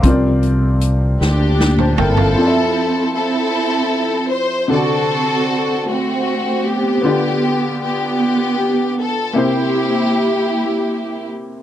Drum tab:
HH |x-x-x-------|------------|------------|------------|
SD |------o-o---|------------|------------|------------|
T2 |---------o--|------------|------------|------------|
FT |----------oo|------------|------------|------------|
BD |o-----------|------------|------------|------------|

HH |------------|
SD |------------|
T2 |------------|
FT |------------|
BD |------------|